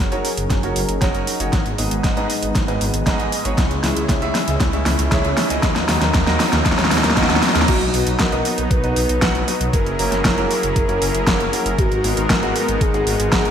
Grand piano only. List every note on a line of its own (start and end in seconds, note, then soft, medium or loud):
0.12 0.26 F#3 medium
0.12 0.26 C#4 medium
0.12 0.26 D#4 medium
0.12 0.26 F#4 medium
0.12 0.26 A#4 medium
0.12 0.26 C#5 loud
0.63 0.77 F#3 medium
0.63 0.77 C#4 medium
0.63 0.77 D#4 medium
0.63 0.77 F#4 medium
0.63 0.77 A#4 medium
0.63 0.77 C#5 medium
1.01 1.37 F#3 medium
1.01 1.37 C#4 medium
1.01 1.37 D#4 medium
1.01 1.37 F#4 medium
1.01 1.37 A#4 medium
1.01 1.37 C#5 loud
1.40 1.51 C#4 medium
1.40 1.51 D#4 medium
1.40 1.51 F#4 medium
1.40 1.51 A#4 medium
1.40 1.51 C#5 loud
1.78 2.14 G#2 medium
1.78 2.14 B3 medium
1.78 2.14 D#4 medium
1.78 2.14 G#4 medium
1.78 2.14 B4 medium
1.78 2.14 D#5 medium
2.17 2.31 G#2 medium
2.17 2.31 B3 medium
2.17 2.31 D#4 medium
2.17 2.31 G#4 medium
2.17 2.31 B4 medium
2.17 2.31 D#5 loud
2.68 2.82 G#2 medium
2.68 2.82 B3 medium
2.68 2.82 D#4 medium
2.68 2.82 G#4 medium
2.68 2.82 B4 medium
2.68 2.82 D#5 medium
3.07 3.42 G#2 loud
3.07 3.42 B3 medium
3.07 3.42 D#4 medium
3.07 3.42 G#4 medium
3.07 3.42 B4 medium
3.07 3.42 D#5 loud
3.45 3.56 B3 medium
3.45 3.56 D#4 medium
3.45 3.56 G#4 medium
3.45 3.56 B4 medium
3.45 3.56 C#5 loud
3.84 4.19 C#3 medium
3.84 4.19 C#4 medium
3.84 4.19 E4 medium
3.84 4.19 G#4 medium
3.84 4.19 C#5 medium
3.84 4.19 E5 medium
4.22 4.36 C#3 medium
4.22 4.36 C#4 medium
4.22 4.36 E4 medium
4.22 4.36 G#4 medium
4.22 4.36 C#5 medium
4.22 4.36 E5 loud
4.73 4.87 C#3 medium
4.73 4.87 C#4 medium
4.73 4.87 E4 medium
4.73 4.87 G#4 medium
4.73 4.87 C#5 medium
4.73 4.87 E5 medium
5.12 5.47 C#3 loud
5.12 5.47 C#4 medium
5.12 5.47 E4 medium
5.12 5.47 G#4 medium
5.12 5.47 C#5 medium
5.12 5.47 E5 loud
5.50 5.61 C#4 medium
5.50 5.61 E4 medium
5.50 5.61 G#4 medium
5.50 5.62 C#5 medium
5.50 5.61 D#5 loud
5.89 6.24 D#3 medium
5.89 6.24 A#3 medium
5.89 6.24 D#4 medium
5.89 6.24 F#4 medium
5.89 6.24 A#4 medium
5.89 6.24 D#5 medium
6.27 6.41 D#3 medium
6.27 6.41 A#3 medium
6.27 6.41 D#4 medium
6.27 6.41 F#4 medium
6.27 6.41 A#4 medium
6.27 6.41 D#5 loud
6.78 6.92 D#3 medium
6.78 6.92 A#3 medium
6.78 6.92 D#4 medium
6.78 6.92 F#4 medium
6.78 6.92 A#4 medium
6.78 6.92 D#5 medium
7.17 7.52 D#3 loud
7.17 7.52 A#3 medium
7.17 7.52 D#4 medium
7.17 7.52 F#4 medium
7.17 7.52 A#4 medium
7.17 7.52 D#5 loud
7.55 7.67 A#3 medium
7.55 7.67 D#4 medium
7.55 7.67 F#4 medium
7.55 7.67 A#4 medium
7.55 7.67 C#5 loud
7.94 8.29 B2 medium
7.94 8.29 B3 medium
7.94 8.29 D#4 medium
7.94 8.29 F#4 medium
7.94 8.29 B4 medium
7.94 8.29 D#5 medium
8.32 8.46 B2 medium
8.32 8.46 B3 medium
8.32 8.46 D#4 medium
8.32 8.46 F#4 medium
8.32 8.46 B4 medium
8.32 8.46 D#5 loud
8.84 8.97 B2 medium
8.84 8.97 B3 medium
8.84 8.97 D#4 medium
8.84 8.97 F#4 medium
8.84 8.97 B4 medium
8.84 8.97 D#5 medium
9.22 9.44 B2 loud
9.22 9.44 B3 medium
9.22 9.44 D#4 medium
9.22 9.44 F#4 medium
9.22 9.44 B4 medium
9.22 9.44 F#5 loud
9.48 9.61 B3 medium
9.48 9.61 D#4 medium
9.48 9.61 F#4 medium
9.48 9.61 B4 medium
9.48 9.61 D#5 medium
9.99 10.34 A#3 medium
9.99 10.34 C#4 medium
9.99 10.34 E4 medium
9.99 10.34 F#4 medium
9.99 10.34 A#4 medium
10.38 10.51 A#3 medium
10.38 10.51 C#4 medium
10.38 10.51 E4 medium
10.38 10.51 F#4 medium
10.38 10.51 A#4 loud
10.89 11.02 A#3 medium
10.89 11.03 C#4 medium
10.89 11.02 E4 medium
10.89 11.03 F#4 medium
10.89 11.03 A#4 medium
11.27 11.49 A#3 medium
11.27 11.49 C#4 medium
11.27 11.49 E4 medium
11.27 11.49 F#4 medium
11.27 11.49 C#5 loud
11.53 11.67 A#3 medium
11.53 11.67 C#4 medium
11.53 11.67 E4 medium
11.53 11.67 F#4 medium
11.53 11.67 A#4 medium
12.04 12.40 G#2 medium
12.04 12.40 G#3 medium
12.04 12.40 B3 medium
12.04 12.40 D#4 medium
12.04 12.40 F#4 medium
12.04 12.40 G#4 medium
12.43 12.56 G#2 medium
12.43 12.56 G#3 medium
12.43 12.56 B3 medium
12.43 12.56 D#4 medium
12.43 12.56 F#4 medium
12.43 12.56 G#4 loud
12.94 13.08 G#2 medium
12.94 13.08 G#3 medium
12.94 13.08 B3 medium
12.94 13.08 D#4 medium
12.94 13.08 F#4 medium
12.94 13.08 G#4 medium
13.32 13.51 G#2 medium
13.32 13.51 G#3 medium
13.32 13.51 B3 medium
13.32 13.51 D#4 medium
13.32 13.51 F#4 medium
13.32 13.51 A#4 loud